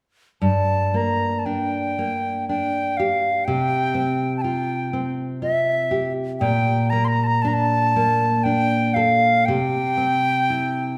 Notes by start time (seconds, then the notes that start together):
0.42 G2 A5
0.94 A#3 A#5
1.39 A5
1.46 D4 G5
1.99 A#3
2.49 D4 G5
2.97 G4 F5
3.45 C3 G5
3.94 C4
4.37 A5
4.42 F4 G5
4.93 C4
5.42 F4 E5
5.91 G4
6.40 A#2 G5
6.90 A#3 A#5
7.05 A#5 C6
7.24 A5 A#5
7.42 D4 A5
7.48 A#5
7.54 A5
7.96 A#3
8.44 D4 G5
8.94 A4 F5
9.45 C3 G5
9.97 C4
10.50 E4